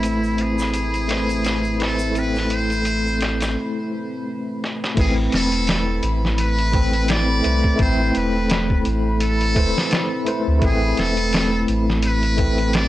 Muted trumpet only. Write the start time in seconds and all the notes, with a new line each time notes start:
Already playing: E4
0.42 G#4
1.84 A4
2.19 B4
2.54 C5
5.00 G#4
5.35 A4
6.41 B4
7.11 D5
7.81 C5
8.17 B4
9.23 A4
10.64 G#4
11.00 A4
12.06 B4
12.75 D5